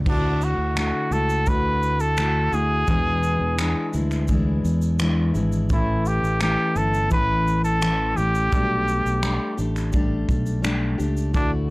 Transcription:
0.05 D2 D3 A3 D4 E4 F#4, kick, crash
0.41 F#4, shaker
0.58 D2
0.76 D3 A3 E4 F#4, finger snap, shaker
1.11 C#2 A3 E4 F#4 A4, shaker
1.30 shaker
1.46 D2 D3 A3 E4 F#4 B4, kick, shaker
1.83 shaker
2.00 A4, shaker
2.17 D3 A3 E4 F#4, finger snap, shaker
2.52 D2 A3 E4 F#4 G#4, shaker
2.87 E2 B2 E3 G#3 D4 E4, kick, shaker
3.23 shaker
3.41 E2
3.57 E3 G#3 D4 E4, finger snap, shaker
3.93 D2 E3 G#3 D4 E4, shaker
4.11 finger snap, shaker
4.28 E3 G#3 D4 E4, kick, shaker
4.65 E2, shaker
4.82 shaker
4.99 E3 G#3 D4 E4, finger snap, shaker
5.34 G#1 E3 G#3 D4 E4, shaker
5.52 shaker
5.70 A1 A2 E3 A3 C#4 E4, kick, shaker
6.06 G4, shaker
6.23 A1, shaker
6.41 E3 A3 C#4 E4 G4, finger snap, shaker
6.75 G1 A3 C#4 E4 A4, shaker
6.94 shaker
7.10 A1 E3 A3 C#4 E4 B4, kick, shaker
7.47 shaker
7.64 A4, shaker
7.81 E3 A3 C#4 E4, finger snap, shaker
8.16 A1 A3 C#4 E4 G4, shaker
8.35 shaker
8.52 B1 B2 G3 A3 D4 G4, kick, shaker
8.88 shaker
9.05 B1, shaker
9.23 G3 A3 D4 G4, finger snap, shaker
9.57 A1 A3 D4 G4, shaker
9.76 finger snap, shaker
9.92 G3 A3 D4 G4, kick, shaker
10.29 B1, kick, shaker
10.46 shaker
10.62 G3 A3 D4 G4, finger snap, shaker
10.98 C#2 A3 D4 G4, shaker
11.17 shaker
11.33 D2 D3 A3 D4 E4 F#4, kick, shaker

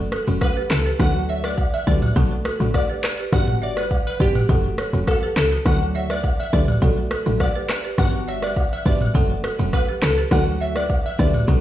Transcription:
Already playing: F#1
0.12 F#4 A4, cross-stick, high agogo, shaker
0.27 E1 F#3 A3 C#4 F#4, shaker
0.41 B4, kick, cross-stick, high agogo, low woodblock, shaker
0.57 G4 B4
0.70 C#2 A4, cross-stick, clap, open hi-hat, high agogo, shaker
0.86 G4 B4, shaker
0.99 D2 F#3 A3 D4 F#4 F#5, kick, cross-stick, high agogo, shaker
1.28 C#5 E5, shaker
1.43 B4 D5, cross-stick, high agogo, shaker
1.57 kick, low woodblock, shaker
1.74 E5, high agogo
1.87 D2 F#3 A3 D4 F#4 G4 B4 D5, kick, shaker
2.02 mid tom, high agogo, shaker
2.16 B1 F#3 A3 D4 F#4 A4, kick, shaker
2.45 F#4 A4, cross-stick, high agogo, shaker
2.60 A1 F#3 A3 D4 F#4, shaker
2.74 D5, kick, cross-stick, high agogo, low woodblock, shaker
2.90 G4 B4
3.04 cross-stick, clap, open hi-hat, high agogo, shaker
3.19 G4 B4, shaker
3.32 G1 G3 B3 D4 F#4 F#5, kick, cross-stick, high agogo, shaker
3.48 mid tom
3.61 C#5 D5 E5, shaker
3.76 B4 D5, cross-stick, high agogo, shaker
3.90 kick, low woodblock, shaker
4.07 B4, high agogo
4.19 G1 G3 B3 D4 F#4 G4 B4, kick, shaker
4.35 mid tom, high agogo, shaker
4.49 F#1 F#3 A3 C#4 F#4 A4, kick, shaker
4.78 A4 C#5, cross-stick, high agogo, shaker
4.93 E1 F#3 A3 C#4 F#4, shaker
5.07 A4, kick, cross-stick, high agogo, low woodblock, shaker
5.23 G4 B4
5.36 C#2 A4, cross-stick, clap, open hi-hat, high agogo, shaker
5.52 F#4 A4, shaker
5.65 D2 F#3 A3 D4 F#4 F#5, kick, cross-stick, high agogo, shaker
5.95 C#5 E5, shaker
6.10 B4 D5, cross-stick, high agogo, shaker
6.23 kick, low woodblock, shaker
6.40 E5, high agogo
6.53 D2 F#3 A3 D4 F#4 G4 B4 D5, kick, shaker
6.68 mid tom, high agogo, shaker
6.82 B1 F#3 A3 D4 F#4 A4, kick, shaker
7.11 F#4 A4, cross-stick, high agogo, shaker
7.26 A1 F#3 A3 D4 F#4, shaker
7.40 D5, kick, cross-stick, high agogo, low woodblock, shaker
7.56 G4 B4
7.69 cross-stick, clap, open hi-hat, high agogo, shaker
7.84 G4 B4, shaker
7.98 G1 G3 B3 D4 F#4 F#5, kick, cross-stick, high agogo, shaker
8.27 C#5 E5, shaker
8.42 B4 D5, cross-stick, high agogo, shaker
8.56 kick, low woodblock, shaker
8.73 E5, high agogo
8.85 G1 G3 B3 D4 F#4 G4 B4 D5, kick, shaker
9.01 mid tom, high agogo, shaker
9.14 F#1 F#3 A3 C#4 F#4 A4, kick, shaker
9.44 F#4 A4, cross-stick, high agogo, shaker
9.59 E1 F#3 A3 C#4 F#4, shaker
9.73 B4, kick, cross-stick, high agogo, low woodblock, shaker
9.89 G4 B4
10.02 C#2 A4, cross-stick, clap, open hi-hat, high agogo, shaker
10.17 G4 B4, shaker
10.31 D2 F#3 A3 D4 F#4 F#5, kick, cross-stick, high agogo, shaker
10.60 C#5 E5, shaker
10.75 B4 D5, cross-stick, high agogo, shaker
10.89 kick, low woodblock, shaker
11.06 E5, high agogo
11.18 D2 F#3 A3 D4 F#4 G4 B4 D5, kick, shaker
11.34 mid tom, high agogo, shaker
11.47 B1 F#3 A3 D4 F#4 A4, kick, shaker

